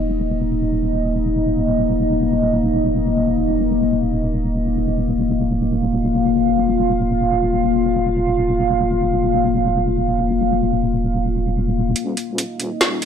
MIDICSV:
0, 0, Header, 1, 4, 480
1, 0, Start_track
1, 0, Tempo, 500000
1, 12529, End_track
2, 0, Start_track
2, 0, Title_t, "Analog synth pad"
2, 0, Program_c, 0, 89
2, 0, Note_on_c, 0, 58, 79
2, 0, Note_on_c, 0, 63, 72
2, 0, Note_on_c, 0, 75, 82
2, 4903, Note_off_c, 0, 63, 0
2, 4924, Note_off_c, 0, 75, 0
2, 4942, Note_on_c, 0, 65, 71
2, 4943, Note_on_c, 0, 77, 86
2, 11439, Note_off_c, 0, 58, 0
2, 11440, Note_off_c, 0, 65, 0
2, 11462, Note_off_c, 0, 77, 0
2, 11478, Note_on_c, 0, 58, 76
2, 11478, Note_on_c, 0, 63, 73
2, 11478, Note_on_c, 0, 75, 91
2, 12529, Note_off_c, 0, 58, 0
2, 12529, Note_off_c, 0, 63, 0
2, 12529, Note_off_c, 0, 75, 0
2, 12529, End_track
3, 0, Start_track
3, 0, Title_t, "Wobble bass"
3, 0, Program_c, 1, 39
3, 0, Note_on_c, 1, 27, 81
3, 4923, Note_off_c, 1, 27, 0
3, 4943, Note_on_c, 1, 27, 85
3, 11460, Note_off_c, 1, 27, 0
3, 11479, Note_on_c, 1, 27, 93
3, 12529, Note_off_c, 1, 27, 0
3, 12529, End_track
4, 0, Start_track
4, 0, Title_t, "Drums"
4, 11480, Note_on_c, 9, 42, 78
4, 11576, Note_off_c, 9, 42, 0
4, 11684, Note_on_c, 9, 42, 55
4, 11780, Note_off_c, 9, 42, 0
4, 11888, Note_on_c, 9, 42, 81
4, 11984, Note_off_c, 9, 42, 0
4, 12092, Note_on_c, 9, 42, 55
4, 12188, Note_off_c, 9, 42, 0
4, 12296, Note_on_c, 9, 38, 114
4, 12296, Note_on_c, 9, 42, 76
4, 12392, Note_off_c, 9, 38, 0
4, 12392, Note_off_c, 9, 42, 0
4, 12499, Note_on_c, 9, 42, 52
4, 12529, Note_off_c, 9, 42, 0
4, 12529, End_track
0, 0, End_of_file